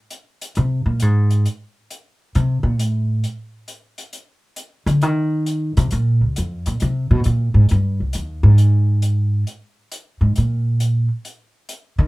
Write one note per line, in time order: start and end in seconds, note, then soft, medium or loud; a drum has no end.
0.11 closed hi-hat soft
0.41 closed hi-hat soft
0.55 0.85 C3 medium
0.55 closed hi-hat soft
0.86 1.02 A#2 medium
1.00 1.45 G#2 medium
1.00 closed hi-hat soft
1.30 closed hi-hat soft
1.46 closed hi-hat soft
1.91 closed hi-hat soft
2.35 2.63 C3 medium
2.35 closed hi-hat soft
2.63 2.79 A#2 medium
2.79 3.23 A2 medium
2.79 closed hi-hat soft
3.24 closed hi-hat soft
3.68 closed hi-hat soft
3.98 closed hi-hat soft
4.13 closed hi-hat soft
4.56 closed hi-hat soft
4.86 5.02 D3 medium
4.86 closed hi-hat soft
5.02 5.77 D#3 medium
5.02 closed hi-hat soft
5.46 closed hi-hat soft
5.77 5.90 C3 medium
5.77 closed hi-hat soft
5.91 6.20 A#2 medium
5.91 closed hi-hat soft
6.21 6.35 C#2 soft
6.36 6.66 F2 medium
6.36 closed hi-hat soft
6.66 6.80 A#2 medium
6.66 closed hi-hat soft
6.80 7.10 C3 medium
6.80 closed hi-hat soft
7.11 7.24 B2 medium
7.24 7.54 A#2 medium
7.24 closed hi-hat soft
7.54 7.68 G#2 medium
7.69 7.99 G2 medium
7.69 closed hi-hat soft
8.00 8.13 C2 soft
8.13 8.43 D#2 medium
8.13 closed hi-hat soft
8.43 9.42 G#2 medium
8.58 closed hi-hat soft
9.02 closed hi-hat soft
9.47 closed hi-hat soft
9.92 closed hi-hat soft
10.21 10.35 G#2 medium
10.36 11.07 A#2 medium
10.36 closed hi-hat soft
10.80 closed hi-hat soft
11.25 closed hi-hat soft
11.69 closed hi-hat soft
11.98 12.08 D#3 medium